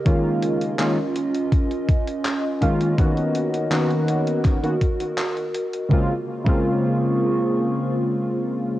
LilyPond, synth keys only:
\new Staff \with { instrumentName = "Synth keys" } { \time 4/4 \key bes \minor \tempo 4 = 82 <ees aes bes des' f'>4 <ees aes bes des' f'>16 r2 r16 <ees aes bes des' f'>8 | <dis ais b des' fis'>4 <dis ais b des' fis'>4~ <dis ais b des' fis'>16 <dis ais b des' fis'>16 r4. | <des aes bes c' f'>16 r8 <des aes bes c' f'>2.~ <des aes bes c' f'>16 | }